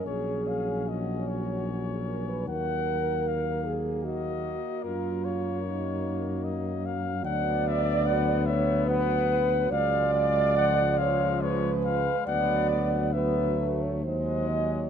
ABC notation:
X:1
M:3/4
L:1/16
Q:1/4=73
K:D#m
V:1 name="Flugelhorn"
c2 e2 d2 c6 | f4 e2 z2 d4 | A2 c6 d2 e2 | [K:Bdor] f2 e2 f2 e2 f4 |
^e2 e2 f2 e2 c2 e2 | f2 f2 e2 z2 ^d4 |]
V:2 name="French horn section"
G4 F4- F G A B | A6 G2 F4 | E4 D6 z2 | [K:Bdor] d6 c2 B4 |
d6 c2 B4 | d4 B3 c ^B2 ^d c |]
V:3 name="Trombone section"
C12 | A,12- | A,12 | [K:Bdor] B,12 |
G,12 | B,4 B,2 A,2 G,4 |]
V:4 name="Trombone" clef=bass
F,12- | F,8- F,2 z2 | F,12- | [K:Bdor] F,12- |
F,4 ^E,8 | F,4 F,4 F,4 |]
V:5 name="Tuba" clef=bass
A,,,12 | D,,8- D,,2 z2 | F,,12 | [K:Bdor] D,,12 |
C,,12 | D,,8 ^D,,4 |]